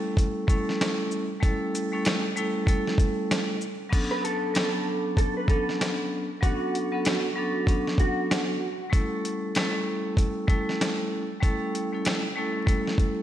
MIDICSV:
0, 0, Header, 1, 4, 480
1, 0, Start_track
1, 0, Key_signature, 2, "minor"
1, 0, Tempo, 625000
1, 1097, Time_signature, 4, 2, 24, 8
1, 10157, End_track
2, 0, Start_track
2, 0, Title_t, "Clean electric guitar"
2, 0, Program_c, 0, 27
2, 3156, Note_on_c, 0, 71, 74
2, 3244, Note_off_c, 0, 71, 0
2, 3258, Note_on_c, 0, 69, 87
2, 3947, Note_off_c, 0, 69, 0
2, 3974, Note_on_c, 0, 69, 78
2, 4106, Note_off_c, 0, 69, 0
2, 4123, Note_on_c, 0, 71, 69
2, 4208, Note_off_c, 0, 71, 0
2, 4215, Note_on_c, 0, 69, 69
2, 4432, Note_off_c, 0, 69, 0
2, 4935, Note_on_c, 0, 66, 106
2, 6106, Note_off_c, 0, 66, 0
2, 6143, Note_on_c, 0, 66, 76
2, 6830, Note_off_c, 0, 66, 0
2, 10157, End_track
3, 0, Start_track
3, 0, Title_t, "Vibraphone"
3, 0, Program_c, 1, 11
3, 0, Note_on_c, 1, 55, 96
3, 0, Note_on_c, 1, 57, 89
3, 0, Note_on_c, 1, 61, 88
3, 0, Note_on_c, 1, 64, 79
3, 0, Note_on_c, 1, 69, 102
3, 333, Note_off_c, 1, 55, 0
3, 335, Note_off_c, 1, 57, 0
3, 338, Note_off_c, 1, 61, 0
3, 341, Note_off_c, 1, 64, 0
3, 344, Note_off_c, 1, 69, 0
3, 362, Note_on_c, 1, 55, 95
3, 368, Note_on_c, 1, 57, 93
3, 374, Note_on_c, 1, 61, 87
3, 379, Note_on_c, 1, 64, 85
3, 385, Note_on_c, 1, 69, 101
3, 937, Note_off_c, 1, 55, 0
3, 940, Note_off_c, 1, 57, 0
3, 943, Note_off_c, 1, 61, 0
3, 945, Note_off_c, 1, 64, 0
3, 948, Note_off_c, 1, 69, 0
3, 1076, Note_on_c, 1, 55, 98
3, 1082, Note_on_c, 1, 57, 89
3, 1087, Note_on_c, 1, 61, 89
3, 1093, Note_on_c, 1, 64, 96
3, 1099, Note_on_c, 1, 69, 110
3, 1437, Note_off_c, 1, 55, 0
3, 1440, Note_off_c, 1, 57, 0
3, 1443, Note_off_c, 1, 61, 0
3, 1445, Note_off_c, 1, 64, 0
3, 1448, Note_off_c, 1, 69, 0
3, 1475, Note_on_c, 1, 55, 93
3, 1480, Note_on_c, 1, 57, 85
3, 1485, Note_on_c, 1, 61, 83
3, 1491, Note_on_c, 1, 64, 85
3, 1497, Note_on_c, 1, 69, 100
3, 1695, Note_off_c, 1, 55, 0
3, 1698, Note_off_c, 1, 57, 0
3, 1701, Note_off_c, 1, 61, 0
3, 1704, Note_off_c, 1, 64, 0
3, 1706, Note_off_c, 1, 69, 0
3, 1811, Note_on_c, 1, 55, 99
3, 1817, Note_on_c, 1, 57, 93
3, 1822, Note_on_c, 1, 61, 83
3, 1828, Note_on_c, 1, 64, 91
3, 1834, Note_on_c, 1, 69, 108
3, 2035, Note_off_c, 1, 55, 0
3, 2042, Note_off_c, 1, 57, 0
3, 2044, Note_off_c, 1, 61, 0
3, 2044, Note_on_c, 1, 55, 94
3, 2047, Note_off_c, 1, 64, 0
3, 2050, Note_off_c, 1, 69, 0
3, 2050, Note_on_c, 1, 57, 89
3, 2055, Note_on_c, 1, 61, 82
3, 2061, Note_on_c, 1, 64, 84
3, 2066, Note_on_c, 1, 69, 110
3, 2725, Note_off_c, 1, 55, 0
3, 2728, Note_off_c, 1, 57, 0
3, 2731, Note_off_c, 1, 61, 0
3, 2733, Note_off_c, 1, 64, 0
3, 2736, Note_off_c, 1, 69, 0
3, 2992, Note_on_c, 1, 54, 95
3, 2997, Note_on_c, 1, 59, 93
3, 3002, Note_on_c, 1, 61, 82
3, 3008, Note_on_c, 1, 62, 86
3, 3014, Note_on_c, 1, 69, 101
3, 3454, Note_off_c, 1, 54, 0
3, 3457, Note_off_c, 1, 59, 0
3, 3459, Note_off_c, 1, 61, 0
3, 3462, Note_off_c, 1, 62, 0
3, 3465, Note_off_c, 1, 69, 0
3, 3485, Note_on_c, 1, 54, 97
3, 3491, Note_on_c, 1, 59, 84
3, 3496, Note_on_c, 1, 61, 83
3, 3502, Note_on_c, 1, 62, 85
3, 3507, Note_on_c, 1, 69, 96
3, 4166, Note_off_c, 1, 54, 0
3, 4168, Note_off_c, 1, 59, 0
3, 4171, Note_off_c, 1, 61, 0
3, 4174, Note_off_c, 1, 62, 0
3, 4177, Note_off_c, 1, 69, 0
3, 4214, Note_on_c, 1, 54, 83
3, 4219, Note_on_c, 1, 59, 82
3, 4225, Note_on_c, 1, 61, 86
3, 4230, Note_on_c, 1, 62, 84
3, 4236, Note_on_c, 1, 69, 93
3, 4783, Note_off_c, 1, 54, 0
3, 4785, Note_off_c, 1, 59, 0
3, 4788, Note_off_c, 1, 61, 0
3, 4791, Note_off_c, 1, 62, 0
3, 4794, Note_off_c, 1, 69, 0
3, 4922, Note_on_c, 1, 54, 89
3, 4927, Note_on_c, 1, 59, 89
3, 4933, Note_on_c, 1, 61, 82
3, 4938, Note_on_c, 1, 62, 93
3, 4944, Note_on_c, 1, 69, 104
3, 5280, Note_off_c, 1, 54, 0
3, 5282, Note_off_c, 1, 59, 0
3, 5285, Note_off_c, 1, 61, 0
3, 5288, Note_off_c, 1, 62, 0
3, 5291, Note_off_c, 1, 69, 0
3, 5311, Note_on_c, 1, 54, 94
3, 5316, Note_on_c, 1, 59, 85
3, 5322, Note_on_c, 1, 61, 76
3, 5328, Note_on_c, 1, 62, 86
3, 5333, Note_on_c, 1, 69, 98
3, 5533, Note_off_c, 1, 54, 0
3, 5536, Note_off_c, 1, 59, 0
3, 5539, Note_off_c, 1, 61, 0
3, 5542, Note_off_c, 1, 62, 0
3, 5544, Note_off_c, 1, 69, 0
3, 5647, Note_on_c, 1, 54, 98
3, 5653, Note_on_c, 1, 59, 86
3, 5659, Note_on_c, 1, 61, 88
3, 5664, Note_on_c, 1, 62, 89
3, 5670, Note_on_c, 1, 69, 104
3, 5877, Note_off_c, 1, 54, 0
3, 5880, Note_off_c, 1, 59, 0
3, 5883, Note_off_c, 1, 61, 0
3, 5886, Note_off_c, 1, 62, 0
3, 5888, Note_off_c, 1, 69, 0
3, 5893, Note_on_c, 1, 54, 93
3, 5899, Note_on_c, 1, 59, 84
3, 5905, Note_on_c, 1, 61, 85
3, 5910, Note_on_c, 1, 62, 91
3, 5916, Note_on_c, 1, 69, 103
3, 6570, Note_off_c, 1, 54, 0
3, 6573, Note_off_c, 1, 59, 0
3, 6575, Note_off_c, 1, 61, 0
3, 6578, Note_off_c, 1, 62, 0
3, 6581, Note_off_c, 1, 69, 0
3, 6833, Note_on_c, 1, 55, 92
3, 6838, Note_on_c, 1, 57, 89
3, 6844, Note_on_c, 1, 61, 81
3, 6850, Note_on_c, 1, 64, 85
3, 6855, Note_on_c, 1, 69, 106
3, 7295, Note_off_c, 1, 55, 0
3, 7297, Note_off_c, 1, 57, 0
3, 7300, Note_off_c, 1, 61, 0
3, 7303, Note_off_c, 1, 64, 0
3, 7306, Note_off_c, 1, 69, 0
3, 7339, Note_on_c, 1, 55, 87
3, 7345, Note_on_c, 1, 57, 85
3, 7351, Note_on_c, 1, 61, 88
3, 7356, Note_on_c, 1, 64, 76
3, 7362, Note_on_c, 1, 69, 101
3, 8013, Note_off_c, 1, 55, 0
3, 8016, Note_off_c, 1, 57, 0
3, 8018, Note_off_c, 1, 61, 0
3, 8021, Note_off_c, 1, 64, 0
3, 8024, Note_off_c, 1, 69, 0
3, 8044, Note_on_c, 1, 55, 93
3, 8049, Note_on_c, 1, 57, 91
3, 8054, Note_on_c, 1, 61, 82
3, 8060, Note_on_c, 1, 64, 87
3, 8066, Note_on_c, 1, 69, 99
3, 8617, Note_off_c, 1, 55, 0
3, 8620, Note_off_c, 1, 57, 0
3, 8623, Note_off_c, 1, 61, 0
3, 8626, Note_off_c, 1, 64, 0
3, 8629, Note_off_c, 1, 69, 0
3, 8758, Note_on_c, 1, 55, 97
3, 8764, Note_on_c, 1, 57, 89
3, 8769, Note_on_c, 1, 61, 85
3, 8774, Note_on_c, 1, 64, 91
3, 8780, Note_on_c, 1, 69, 104
3, 9118, Note_off_c, 1, 55, 0
3, 9121, Note_off_c, 1, 57, 0
3, 9124, Note_off_c, 1, 61, 0
3, 9126, Note_off_c, 1, 64, 0
3, 9129, Note_off_c, 1, 69, 0
3, 9154, Note_on_c, 1, 55, 94
3, 9160, Note_on_c, 1, 57, 85
3, 9165, Note_on_c, 1, 61, 83
3, 9171, Note_on_c, 1, 64, 82
3, 9176, Note_on_c, 1, 69, 98
3, 9375, Note_off_c, 1, 55, 0
3, 9378, Note_off_c, 1, 57, 0
3, 9381, Note_off_c, 1, 61, 0
3, 9384, Note_off_c, 1, 64, 0
3, 9386, Note_off_c, 1, 69, 0
3, 9490, Note_on_c, 1, 55, 93
3, 9496, Note_on_c, 1, 57, 89
3, 9502, Note_on_c, 1, 61, 78
3, 9507, Note_on_c, 1, 64, 87
3, 9513, Note_on_c, 1, 69, 104
3, 9716, Note_off_c, 1, 55, 0
3, 9722, Note_off_c, 1, 57, 0
3, 9724, Note_off_c, 1, 61, 0
3, 9726, Note_on_c, 1, 55, 92
3, 9727, Note_off_c, 1, 64, 0
3, 9730, Note_off_c, 1, 69, 0
3, 9731, Note_on_c, 1, 57, 90
3, 9737, Note_on_c, 1, 61, 82
3, 9742, Note_on_c, 1, 64, 84
3, 9748, Note_on_c, 1, 69, 105
3, 10157, Note_off_c, 1, 55, 0
3, 10157, Note_off_c, 1, 57, 0
3, 10157, Note_off_c, 1, 61, 0
3, 10157, Note_off_c, 1, 64, 0
3, 10157, Note_off_c, 1, 69, 0
3, 10157, End_track
4, 0, Start_track
4, 0, Title_t, "Drums"
4, 130, Note_on_c, 9, 36, 90
4, 141, Note_on_c, 9, 42, 83
4, 207, Note_off_c, 9, 36, 0
4, 218, Note_off_c, 9, 42, 0
4, 368, Note_on_c, 9, 36, 95
4, 381, Note_on_c, 9, 42, 49
4, 381, Note_on_c, 9, 82, 48
4, 445, Note_off_c, 9, 36, 0
4, 457, Note_off_c, 9, 42, 0
4, 457, Note_off_c, 9, 82, 0
4, 531, Note_on_c, 9, 38, 36
4, 608, Note_off_c, 9, 38, 0
4, 624, Note_on_c, 9, 38, 112
4, 625, Note_on_c, 9, 42, 78
4, 631, Note_on_c, 9, 40, 88
4, 700, Note_off_c, 9, 38, 0
4, 702, Note_off_c, 9, 42, 0
4, 708, Note_off_c, 9, 40, 0
4, 854, Note_on_c, 9, 82, 48
4, 931, Note_off_c, 9, 82, 0
4, 1096, Note_on_c, 9, 36, 113
4, 1098, Note_on_c, 9, 42, 93
4, 1173, Note_off_c, 9, 36, 0
4, 1175, Note_off_c, 9, 42, 0
4, 1344, Note_on_c, 9, 42, 58
4, 1344, Note_on_c, 9, 82, 61
4, 1421, Note_off_c, 9, 42, 0
4, 1421, Note_off_c, 9, 82, 0
4, 1575, Note_on_c, 9, 42, 88
4, 1585, Note_on_c, 9, 38, 116
4, 1592, Note_on_c, 9, 40, 93
4, 1652, Note_off_c, 9, 42, 0
4, 1662, Note_off_c, 9, 38, 0
4, 1669, Note_off_c, 9, 40, 0
4, 1819, Note_on_c, 9, 82, 58
4, 1896, Note_off_c, 9, 82, 0
4, 2050, Note_on_c, 9, 36, 90
4, 2061, Note_on_c, 9, 42, 79
4, 2127, Note_off_c, 9, 36, 0
4, 2138, Note_off_c, 9, 42, 0
4, 2208, Note_on_c, 9, 38, 41
4, 2284, Note_off_c, 9, 38, 0
4, 2288, Note_on_c, 9, 36, 97
4, 2300, Note_on_c, 9, 42, 49
4, 2300, Note_on_c, 9, 82, 50
4, 2365, Note_off_c, 9, 36, 0
4, 2377, Note_off_c, 9, 42, 0
4, 2377, Note_off_c, 9, 82, 0
4, 2543, Note_on_c, 9, 38, 108
4, 2545, Note_on_c, 9, 42, 79
4, 2551, Note_on_c, 9, 40, 91
4, 2620, Note_off_c, 9, 38, 0
4, 2622, Note_off_c, 9, 42, 0
4, 2627, Note_off_c, 9, 40, 0
4, 2774, Note_on_c, 9, 82, 47
4, 2851, Note_off_c, 9, 82, 0
4, 3015, Note_on_c, 9, 36, 103
4, 3016, Note_on_c, 9, 49, 91
4, 3018, Note_on_c, 9, 42, 89
4, 3092, Note_off_c, 9, 36, 0
4, 3093, Note_off_c, 9, 49, 0
4, 3095, Note_off_c, 9, 42, 0
4, 3263, Note_on_c, 9, 42, 58
4, 3340, Note_off_c, 9, 42, 0
4, 3495, Note_on_c, 9, 42, 85
4, 3504, Note_on_c, 9, 38, 115
4, 3512, Note_on_c, 9, 40, 90
4, 3572, Note_off_c, 9, 42, 0
4, 3581, Note_off_c, 9, 38, 0
4, 3589, Note_off_c, 9, 40, 0
4, 3970, Note_on_c, 9, 36, 90
4, 3981, Note_on_c, 9, 42, 80
4, 4046, Note_off_c, 9, 36, 0
4, 4057, Note_off_c, 9, 42, 0
4, 4208, Note_on_c, 9, 36, 92
4, 4221, Note_on_c, 9, 42, 48
4, 4285, Note_off_c, 9, 36, 0
4, 4297, Note_off_c, 9, 42, 0
4, 4371, Note_on_c, 9, 38, 34
4, 4448, Note_off_c, 9, 38, 0
4, 4464, Note_on_c, 9, 38, 108
4, 4465, Note_on_c, 9, 42, 74
4, 4471, Note_on_c, 9, 40, 87
4, 4540, Note_off_c, 9, 38, 0
4, 4542, Note_off_c, 9, 42, 0
4, 4548, Note_off_c, 9, 40, 0
4, 4936, Note_on_c, 9, 36, 104
4, 4939, Note_on_c, 9, 42, 90
4, 5013, Note_off_c, 9, 36, 0
4, 5016, Note_off_c, 9, 42, 0
4, 5185, Note_on_c, 9, 42, 58
4, 5261, Note_off_c, 9, 42, 0
4, 5415, Note_on_c, 9, 42, 84
4, 5425, Note_on_c, 9, 38, 115
4, 5432, Note_on_c, 9, 40, 92
4, 5492, Note_off_c, 9, 42, 0
4, 5502, Note_off_c, 9, 38, 0
4, 5509, Note_off_c, 9, 40, 0
4, 5890, Note_on_c, 9, 36, 88
4, 5901, Note_on_c, 9, 42, 81
4, 5967, Note_off_c, 9, 36, 0
4, 5978, Note_off_c, 9, 42, 0
4, 6048, Note_on_c, 9, 38, 40
4, 6125, Note_off_c, 9, 38, 0
4, 6129, Note_on_c, 9, 36, 92
4, 6141, Note_on_c, 9, 42, 47
4, 6205, Note_off_c, 9, 36, 0
4, 6217, Note_off_c, 9, 42, 0
4, 6384, Note_on_c, 9, 38, 108
4, 6386, Note_on_c, 9, 42, 75
4, 6391, Note_on_c, 9, 40, 85
4, 6461, Note_off_c, 9, 38, 0
4, 6462, Note_off_c, 9, 42, 0
4, 6468, Note_off_c, 9, 40, 0
4, 6856, Note_on_c, 9, 36, 108
4, 6859, Note_on_c, 9, 42, 92
4, 6933, Note_off_c, 9, 36, 0
4, 6936, Note_off_c, 9, 42, 0
4, 7104, Note_on_c, 9, 42, 58
4, 7181, Note_off_c, 9, 42, 0
4, 7335, Note_on_c, 9, 42, 86
4, 7345, Note_on_c, 9, 38, 118
4, 7352, Note_on_c, 9, 40, 93
4, 7412, Note_off_c, 9, 42, 0
4, 7421, Note_off_c, 9, 38, 0
4, 7429, Note_off_c, 9, 40, 0
4, 7810, Note_on_c, 9, 36, 88
4, 7821, Note_on_c, 9, 42, 77
4, 7887, Note_off_c, 9, 36, 0
4, 7898, Note_off_c, 9, 42, 0
4, 8048, Note_on_c, 9, 36, 93
4, 8060, Note_on_c, 9, 42, 49
4, 8125, Note_off_c, 9, 36, 0
4, 8137, Note_off_c, 9, 42, 0
4, 8211, Note_on_c, 9, 38, 35
4, 8288, Note_off_c, 9, 38, 0
4, 8304, Note_on_c, 9, 38, 105
4, 8306, Note_on_c, 9, 42, 78
4, 8311, Note_on_c, 9, 40, 86
4, 8381, Note_off_c, 9, 38, 0
4, 8383, Note_off_c, 9, 42, 0
4, 8388, Note_off_c, 9, 40, 0
4, 8776, Note_on_c, 9, 36, 106
4, 8779, Note_on_c, 9, 42, 90
4, 8853, Note_off_c, 9, 36, 0
4, 8856, Note_off_c, 9, 42, 0
4, 9024, Note_on_c, 9, 42, 58
4, 9101, Note_off_c, 9, 42, 0
4, 9255, Note_on_c, 9, 42, 83
4, 9265, Note_on_c, 9, 38, 116
4, 9272, Note_on_c, 9, 40, 94
4, 9332, Note_off_c, 9, 42, 0
4, 9341, Note_off_c, 9, 38, 0
4, 9349, Note_off_c, 9, 40, 0
4, 9730, Note_on_c, 9, 36, 85
4, 9741, Note_on_c, 9, 42, 81
4, 9807, Note_off_c, 9, 36, 0
4, 9818, Note_off_c, 9, 42, 0
4, 9888, Note_on_c, 9, 38, 40
4, 9965, Note_off_c, 9, 38, 0
4, 9969, Note_on_c, 9, 36, 95
4, 9980, Note_on_c, 9, 42, 48
4, 10045, Note_off_c, 9, 36, 0
4, 10057, Note_off_c, 9, 42, 0
4, 10157, End_track
0, 0, End_of_file